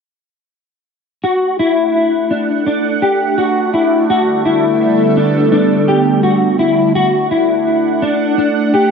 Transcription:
1.24 A3 D4 F#4 F#5
1.59 E4
2.31 D4
2.66 D4
3.02 G4
3.38 F#4
3.74 E4
4.10 D3 G3 B3 F#4 A4
4.45 E4
5.17 D4
5.52 D4
5.88 G4
6.23 F#4
6.59 E4
6.94 A3 D4 F#4 F#5
7.31 E4
8.02 D4
8.38 D4
8.74 G4

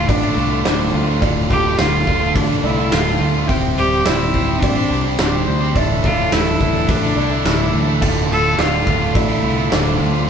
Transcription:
Already playing: D2 A2 D3 A3 F4 A4 D5 F5 D6
0.09 A1 A2 D4 D5, kick, open hi-hat
0.21 D3 A3 F4
0.36 C2 A2 D3 A3 F4
0.49 D3 A3 F4
0.63 D1 D2 A2 D3 A3 D4 F4 C5, snare, open hi-hat
0.78 D3 A3 F4
0.92 D2 A2 D3 A3 F4
1.06 D3 A3 F4
1.20 D1 D2 A2 D3 A3 F4 D5, kick, open hi-hat
1.49 D1 A2 D3 A3 F4 G4 A4, kick
1.63 D3 A3 F4
1.77 D1 D2 A2 D3 A3 F4, snare, open hi-hat
2.06 D1 A2 D3 A3 F4 A4, kick
2.21 D3 A3 F4
2.35 A1 A2 D4, kick, open hi-hat
2.49 D3 A3 F4
2.63 C2 A2 D3 A3 E4 F4 D5
2.77 D3 A3 F4
2.91 D1 D2 A2 D3 A3 F4, snare, open hi-hat
3.06 D3 A3 F4
3.19 D2 A2 D3 A3 F4 F5
3.34 D3 A3 F4
3.48 D1 C3 G3 C4 G4 C5 E5 G5, kick, open hi-hat
3.76 D1 G3 C4 G4 C5
3.90 C4 G4 C5
4.04 D1 C3 G3 C4 E4 G4 C5 D5, snare, open hi-hat
4.33 D1 G3 C4 G4 C5, kick
4.47 C4 G4 C5
4.61 A1 G3 D4 D5, kick, open hi-hat
4.76 C4 G4 C5
4.89 C2 G3 C4 G4 C5
5.04 C4 G4 C5
5.18 D1 C3 G3 C4 D4 G4 C5, snare, open hi-hat
5.32 C4 G4 C5
5.46 D2 G3 C4 G4 C5
5.60 C4 G4 C5
5.75 D1 A2 E3 A3 D4 E4 A4 D5 E5, kick, open hi-hat
6.03 D1 A3 D4 E4 F4 A4, kick
6.17 A3 D4 E4 A4
6.32 D1 A2 E3 A3 D4 E4 A4, snare, open hi-hat
6.60 D1 A3 D4 E4 A4, kick
6.74 A3 D4 E4 A4
6.89 A1 A3 D4, kick, open hi-hat
7.03 A3 D4 E4 A4
7.16 C2 A3 D4 E4 A4 D5
7.31 A3 D4 E4 A4
7.45 D1 A2 E3 A3 D4 E4 A4, snare, open hi-hat
7.59 A3 D4 E4 A4
7.73 D2 A3 D4 E4 A4 E5
7.87 A3 D4 E4 A4
8.01 D1 D2 A2 D3 A3 F4 D5 F5 A5, kick, crash
8.29 D1 A2 D3 A3 F4 A4
8.45 D3 A3 F4
8.58 D1 D2 A2 D3 A3 F4 D5, snare, open hi-hat
8.86 D1 A2 D3 A3 F4, kick
9.00 D3 A3 F4
9.15 A1 A2 E4 D5, kick, open hi-hat
9.28 D3 A3 F4
9.43 C2 A2 D3 A3 F4
9.57 D3 A3 F4
9.71 D1 D2 A2 D3 A3 D4 F4 C5, snare, open hi-hat
9.85 D3 A3 F4
9.99 D2 A2 D3 A3 F4
10.13 D3 A3 F4

